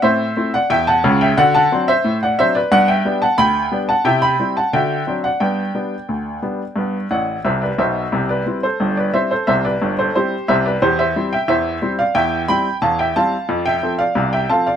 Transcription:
<<
  \new Staff \with { instrumentName = "Upright piano" } { \time 2/4 \key g \major \tempo 4 = 89 <c'' e''>8. <d'' fis''>16 <e'' g''>16 <fis'' a''>8 <e'' g''>16 | <d'' fis''>16 <fis'' a''>8 <c'' e''>8 <d'' fis''>16 <c'' e''>16 <b' d''>16 | <d'' fis''>16 <e'' g''>8 <fis'' a''>16 <g'' b''>8. <fis'' a''>16 | <e'' g''>16 <g'' b''>8 <fis'' a''>16 <e'' g''>8. <d'' fis''>16 |
<d'' g''>2~ | <d'' g''>8 <d'' fis''>8 <c'' e''>16 <b' d''>16 <c'' e''>8~ | \key c \major <c'' e''>16 <b' d''>8 <a' c''>8 <b' d''>16 <c'' e''>16 <a' c''>16 | <c'' e''>16 <b' d''>8 <a' c''>16 <g' c''>8 <c'' e''>16 <b' d''>16 |
<g' c''>16 <c'' e''>8 <e'' g''>16 <c'' e''>8. <d'' f''>16 | <e'' g''>8 <g'' b''>8 <f'' a''>16 <e'' g''>16 <f'' a''>8~ | <f'' a''>16 <e'' g''>8 <d'' f''>8 <e'' g''>16 <f'' a''>16 <d'' f''>16 | }
  \new Staff \with { instrumentName = "Upright piano" } { \clef bass \time 2/4 \key g \major <a, c'>8 <a c' e'>8 e,8 <cis, cis>8 | <d fis'>8 <fis c' d'>8 a,8 <fis c' d'>8 | <g, b>8 <g b d'>8 d,8 <g b d'>8 | <c e'>8 <g c' e'>8 <d fis'>8 <fis c' d'>8 |
<g, b>8 <g b d'>8 d,8 <g b d'>8 | <g, b>8 <a,, a,>8 <c, c>8 <b,, b,>8 | \key c \major <c, c>8 <g c' e'>8 <g,, g,>8 <g c' e'>8 | <c, c>8 <g,, g,>8 <g c' e'>8 <c, c>8 |
<e, e>8 <g c' e'>8 <e, e>8 <g c' e'>8 | <e, e>8 <g c' e'>8 <e, e>8 <g c' e'>8 | <f, f>8 <f c' a'>8 <c, c>8 <f c' a'>8 | }
>>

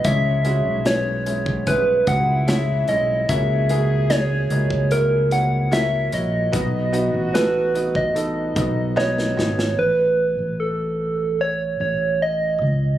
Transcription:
<<
  \new Staff \with { instrumentName = "Soft synth lead" } { \time 4/4 \key a \lydian \tempo 4 = 74 e''4 cis''4 b'8 fis''8 e''8 dis''8 | e''4 cis''4 ais'8 fis''8 e''8 dis''8~ | dis''4 b'8. dis''4~ dis''16 cis''4 | b'4 a'4 cis''8 cis''8 dis''4 | }
  \new Staff \with { instrumentName = "Felt piano" } { \time 4/4 \key a \lydian <gis cis' e' cis''>8 <gis cis' e' fis'>8 <gis cis' e' b'>8 <gis cis' e' cis''>8 <gis cis' e' cis''>8 <gis cis' e' fis'>8 <gis cis' e' cis''>8 <gis cis' e' cis''>8 | <ais e' fis' cis''>8 <ais e' fis' gis'>8 <ais e' fis' gis'>8 <ais e' fis' dis''>8 <ais e' fis' cis''>8 <ais e' fis' cis''>8 <ais e' fis' cis''>8 <ais e' fis' cis''>8 | <b dis' fis' dis''>8 <b dis' fis' dis''>8 <b dis' fis' a'>8 <b dis' fis' dis''>8 <b dis' fis' a'>8 <b dis' fis' dis''>8 <b dis' fis' dis''>8 <b dis' fis' dis''>8 | r1 | }
  \new Staff \with { instrumentName = "Felt piano" } { \clef bass \time 4/4 \key a \lydian gis,4. r2 r8 | cis4. r2 r8 | r1 | r1 | }
  \new Staff \with { instrumentName = "French horn section" } { \time 4/4 \key a \lydian cis'4. r8 e'2 | gis'2.~ gis'8 r8 | fis'2 dis'4. r8 | r1 | }
  \new Staff \with { instrumentName = "Fingered electric bass" } { \clef bass \time 4/4 \key a \lydian cis,8. b,,4.~ b,,16 cis,4 b,,8 | cis,4. cis,2 ais,,8 | b,,8. a,,4.~ a,,16 b,,4 gis,,8 | a,,8. a,,4.~ a,,16 a,,4 cis,8 | }
  \new DrumStaff \with { instrumentName = "Drums" } \drummode { \time 4/4 <hh bd>8 hh8 <hh sn>8 hh16 bd16 <hh bd>8 <hh bd>8 <hh sn>8 hh8 | <hh bd>8 hh8 <hh sn>8 hh16 bd16 hh8 hh8 <hh sn>8 hh8 | <hh bd>8 hh8 <hh sn>8 hh16 bd16 hh8 <hh bd>8 sn16 sn16 sn16 sn16 | r4 r4 r4 r4 | }
>>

